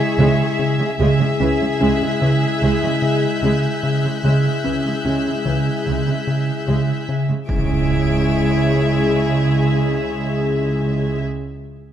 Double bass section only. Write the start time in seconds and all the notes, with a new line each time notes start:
0.19 C#2
1.00 C#2
1.41 C#2
1.81 C#2
2.21 C#2
2.62 C#2
3.43 C#2
4.24 C#2
4.65 C#2
5.06 C#2
5.47 C#2
5.88 C#2
6.69 C#2
7.51 C#2